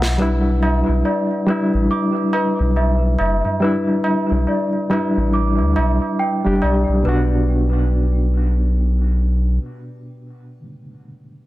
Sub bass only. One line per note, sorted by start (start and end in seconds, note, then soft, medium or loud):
0.00 0.83 B1 loud
0.88 1.03 B1 medium
1.74 1.89 A1 medium
2.60 3.16 B1 loud
3.20 3.42 F#1 loud
4.31 4.46 B1 medium
5.17 5.61 A1 medium
5.60 5.75 D2 medium
5.77 5.99 B1 medium
6.45 6.60 F#1 medium
6.63 6.85 B1 loud
6.88 7.03 B1 medium
7.06 9.58 B1 medium